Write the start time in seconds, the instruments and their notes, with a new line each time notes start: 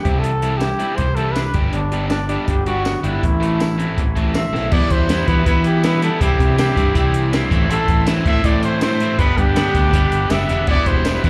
Already playing: overdriven electric guitar G3
0.01 overdriven electric guitar C3 C4 E4, trumpet G4, kick, closed hi-hat
0.05 fingered electric bass C2, overdriven electric guitar E3 G3
0.19 trumpet A4
0.23 overdriven electric guitar C3, closed hi-hat
0.42 overdriven electric guitar E3 G3 C4 E4, closed hi-hat
0.58 overdriven electric guitar E4, trumpet G4, snare, closed hi-hat, tambourine
0.79 overdriven electric guitar E3 G3 C4 E4, closed hi-hat
0.96 fingered electric bass C2, overdriven electric guitar E3, trumpet C5, kick, closed hi-hat
1.15 overdriven electric guitar E3 G3 C4 E4, trumpet A4, closed hi-hat
1.33 overdriven electric guitar D4, trumpet B4, snare, closed hi-hat, tambourine
1.54 fingered electric bass G1, overdriven electric guitar G2 G3 B3 D4 G4, kick, closed hi-hat
1.70 fingered electric bass G1, trumpet D4, closed hi-hat
1.75 overdriven electric guitar G2
1.92 overdriven electric guitar G3 B3 D4 G4, closed hi-hat
2.08 trumpet D4, overdriven electric guitar D4, snare, closed hi-hat, tambourine
2.28 overdriven electric guitar G3 B3 D4 G4, trumpet D4, closed hi-hat
2.47 fingered electric bass G1, overdriven electric guitar D3, trumpet G4, kick, closed hi-hat
2.66 overdriven electric guitar G3 B3 D4 G4, trumpet F#4, closed hi-hat
2.85 overdriven electric guitar B3, snare, closed hi-hat, tambourine
3.03 fingered electric bass G1, overdriven electric guitar G3 B3 D4 G4, trumpet E4, closed hi-hat
3.23 fingered electric bass A1, overdriven electric guitar A2, kick, closed hi-hat
3.40 overdriven electric guitar E3 A3 C4 E4 A4, closed hi-hat
3.60 overdriven electric guitar E4, snare, closed hi-hat, tambourine
3.78 overdriven electric guitar E3 A3 C4 E4 A4, closed hi-hat
3.98 fingered electric bass A1, overdriven electric guitar E3, kick, closed hi-hat
4.16 overdriven electric guitar E3 A3 C4 E4 A4, kick, closed hi-hat
4.34 overdriven electric guitar C4, trumpet E5, snare, closed hi-hat, tambourine
4.52 fingered electric bass B1, overdriven electric guitar E3 C4 E4 A4, snare
4.71 overdriven electric guitar E2 B2 E3 G3 B3 E4, fingered electric bass E2, analog synth pad G4 E5 B5, trumpet D5, kick, crash
4.90 fingered electric bass E2, trumpet C5, kick, closed hi-hat
5.09 overdriven electric guitar E2 B2 E3 G3 B3 E4, snare, closed hi-hat, tambourine
5.27 overdriven electric guitar E2 B2 E3 G3 B3 E4, fingered electric bass E3, trumpet B4, kick, closed hi-hat
5.45 overdriven electric guitar E2 B2 E3 G3 B3 E4, fingered electric bass E3, trumpet B4, kick, closed hi-hat
5.64 trumpet G4, closed hi-hat
5.83 overdriven electric guitar E2 B2 E3 G3 B3 E4, trumpet B4, snare, closed hi-hat, tambourine
6.01 overdriven electric guitar E2 B2 E3 G3 B3 E4, trumpet A4, closed hi-hat
6.20 fingered electric bass C2, overdriven electric guitar C3 E3 G3 C4 E4, analog synth pad E4 D5 C6, trumpet G4, kick, closed hi-hat
6.39 fingered electric bass C3, kick, closed hi-hat
6.57 overdriven electric guitar C3 E3 G3 C4 E4, trumpet G4, snare, closed hi-hat, tambourine
6.69 snare
6.75 fingered electric bass G2, overdriven electric guitar C3 E3 G3 C4 E4, kick, closed hi-hat
6.94 fingered electric bass C2, overdriven electric guitar C3 E3 G3 C4 E4, trumpet G4, kick, closed hi-hat
7.14 closed hi-hat
7.32 overdriven electric guitar C3 E3 G3 C4 E4, snare, closed hi-hat, tambourine
7.50 fingered electric bass A1, overdriven electric guitar A2 E3 A3 C4 E4, analog synth pad A4 E5, kick, closed hi-hat
7.69 fingered electric bass A1, overdriven electric guitar A2 E3 A3 C4 E4, trumpet A4, closed hi-hat
7.88 fingered electric bass A1, kick, closed hi-hat
8.06 overdriven electric guitar A2 E3 A3 C4 E4, snare, closed hi-hat, tambourine
8.25 overdriven electric guitar A2 E3 A3 C4 E4, fingered electric bass A2, trumpet E5, kick, closed hi-hat
8.44 fingered electric bass A2, overdriven electric guitar A2 E3 A3 C4 E4, trumpet D5, kick, closed hi-hat
8.63 trumpet C5, closed hi-hat
8.81 overdriven electric guitar A2 E3 A3 C4 E4, trumpet C5, snare, closed hi-hat, tambourine
8.99 overdriven electric guitar A2 E3 A3 C4 E4, closed hi-hat
9.17 fingered electric bass G1, overdriven electric guitar G2 D3 G3 B3 D4 G4, analog synth pad G4 D5 B5, trumpet B4, kick, closed hi-hat
9.37 fingered electric bass G2, trumpet G4, kick, closed hi-hat
9.54 overdriven electric guitar G2 D3 G3 B3 D4 G4, snare, closed hi-hat, tambourine
9.67 snare
9.73 fingered electric bass D2, overdriven electric guitar G2 D3 G3 B3 D4 G4, kick, closed hi-hat
9.92 fingered electric bass G1, overdriven electric guitar G2 D3 G3 B3 D4 G4, kick, closed hi-hat
10.11 fingered electric bass G1, closed hi-hat
10.29 fingered electric bass F#1, overdriven electric guitar G2 D3 G3 B3 D4 G4, trumpet E5, snare, closed hi-hat, tambourine
10.48 fingered electric bass E1, overdriven electric guitar G2 D3 G3 B3 D4 G4, closed hi-hat
10.66 fingered electric bass E1, overdriven electric guitar E2 B2 E3 G3 B3 E4, analog synth pad G4 E5, trumpet D5, kick, crash
10.86 fingered electric bass E1, trumpet C5, kick, closed hi-hat
11.05 overdriven electric guitar E2 B2 E3 G3 B3 E4, snare, closed hi-hat, tambourine
11.16 snare
11.23 overdriven electric guitar E2 B2 E3 G3 B3 E4, fingered electric bass E2, trumpet B4, kick, closed hi-hat